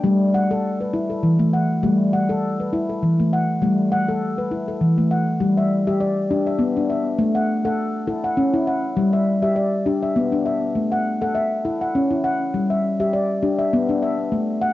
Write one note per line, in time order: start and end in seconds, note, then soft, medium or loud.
0.00 1.06 G3 loud
0.00 0.21 G5 medium
0.04 0.34 A3 medium
0.34 0.80 F#5 medium
0.51 0.80 A4 medium
0.81 1.24 B4 medium
0.94 1.23 E4 medium
1.10 1.53 A4 medium
1.23 1.74 E3 medium
1.39 1.69 A3 medium
1.53 2.00 F#5 medium
1.83 2.85 G3 medium
1.83 2.13 A3 medium
2.13 2.59 F#5 medium
2.29 2.59 A4 medium
2.60 3.03 B4 medium
2.73 3.02 E4 medium
2.89 3.32 A4 medium
3.03 3.54 E3 medium
3.20 3.49 A3 medium
3.33 3.79 F#5 medium
3.62 4.64 G3 medium
3.62 3.92 A3 medium
3.92 4.38 F#5 medium
4.09 4.38 A4 medium
4.38 4.81 B4 medium
4.51 4.81 E4 medium
4.68 5.11 A4 medium
4.81 5.32 E3 medium
4.98 5.27 A3 medium
5.11 5.57 F#5 soft
5.40 6.42 G3 medium
5.57 5.86 E5 medium
5.87 6.17 G4 medium
5.87 6.30 E5 medium
6.00 6.46 D5 medium
6.30 6.60 D4 medium
6.30 6.76 G4 medium
6.46 6.89 E5 medium
6.59 7.10 B3 medium
6.77 7.06 D4 medium
6.90 7.36 E5 medium
7.19 8.21 A3 medium
7.35 7.64 F#5 medium
7.65 7.95 A4 medium
7.65 8.08 F#5 medium
8.08 8.38 E4 medium
8.08 8.54 A4 medium
8.24 8.66 F#5 medium
8.37 8.89 C#4 medium
8.54 8.84 E4 medium
8.67 9.14 F#5 medium
8.97 9.99 G3 medium
9.13 9.41 E5 medium
9.42 9.73 G4 medium
9.42 9.86 E5 medium
9.56 10.03 D5 medium
9.86 10.16 D4 medium
9.86 10.32 G4 medium
10.03 10.44 E5 medium
10.16 10.67 B3 medium
10.32 10.62 D4 medium
10.46 10.92 E5 medium
10.75 11.05 A3 medium
10.92 11.20 F#5 medium
11.21 11.51 A4 medium
11.21 11.65 F#5 medium
11.35 11.81 E5 medium
11.65 11.95 E4 medium
11.65 12.11 A4 medium
11.81 12.23 F#5 medium
11.95 12.46 C#4 medium
12.11 12.40 E4 medium
12.24 12.70 F#5 medium
12.54 12.84 G3 medium
12.70 12.99 E5 medium
13.00 13.30 G4 medium
13.00 13.43 E5 medium
13.13 13.59 D5 medium
13.42 13.72 D4 medium
13.42 13.89 G4 medium
13.59 14.01 E5 medium
13.73 14.24 B3 medium
13.89 14.19 D4 medium
14.03 14.48 E5 medium
14.32 14.62 A3 medium
14.62 14.73 F#5 medium